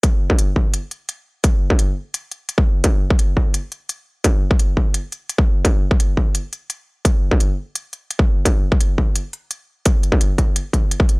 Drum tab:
HH |x---x---x-x-x---|x---x---x-x-x---|x---x---x-x-x---|x---x---x-x-x---|
BD |o--o--o---------|o--o---------o--|o--o--o---------|o--o--o------o--|

HH |x---x---x-x-x---|x---x---x-x-x---|x---x---x-x-x---|x-x-x-x-x-x-x-x-|
BD |o--o--o---------|o--o---------o--|o--o--o---------|o--o--o---o--o--|